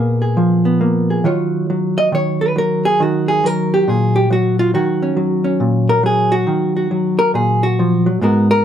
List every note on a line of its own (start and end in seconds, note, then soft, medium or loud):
0.00 1.24 A#2 medium
0.00 0.80 A#3 medium
0.00 0.64 B3 soft
0.00 0.20 G#4 soft
0.00 1.26 D5 medium
0.22 1.09 G#4 soft
0.37 1.24 F3 medium
0.65 1.25 B3 soft
0.81 1.24 A#3 medium
1.10 1.24 G#4 soft
1.24 2.12 D#3 medium
1.24 1.69 F#3 soft
1.24 3.03 F4 soft
1.24 1.97 C#5 soft
1.70 2.55 F#3 medium
1.98 2.13 D#5 medium
2.12 3.00 D#3 medium
2.12 2.42 C#5 medium
2.41 2.57 B4 medium
2.56 3.43 F#3 medium
2.56 2.86 A#4 medium
2.85 3.01 G#4 medium
3.00 4.74 D#3 medium
3.00 3.29 F#4 medium
3.28 3.46 G#4 medium
3.44 4.30 F#3 medium
3.44 3.73 A#4 medium
3.74 3.88 G4 medium
3.88 4.72 A#2 medium
3.88 4.16 G#4 medium
4.16 4.31 G4 medium
4.30 5.16 F#3 medium
4.30 4.59 F#4 medium
4.59 4.74 F4 medium
4.74 6.46 D#3 medium
4.74 5.60 F#4 medium
5.02 5.44 C#4 soft
5.17 6.03 F#3 medium
5.44 6.45 C#4 soft
5.60 6.46 A#2 medium
5.89 6.04 A#4 medium
6.03 6.91 F#3 medium
6.03 6.33 G#4 medium
6.32 6.75 F#4 medium
6.47 7.78 D#3 medium
6.77 7.63 F#4 soft
6.91 8.06 F#3 medium
7.19 7.34 A#4 loud
7.34 8.21 A#2 medium
7.34 7.63 G#4 medium
7.63 8.07 F#4 medium
7.79 8.07 F3 medium
8.06 8.22 F#3 medium
8.21 8.65 G#2 medium
8.21 8.65 G#3 soft
8.21 8.65 B3 soft
8.21 8.65 F#4 soft
8.21 8.50 A#4 soft
8.51 8.65 A#4 loud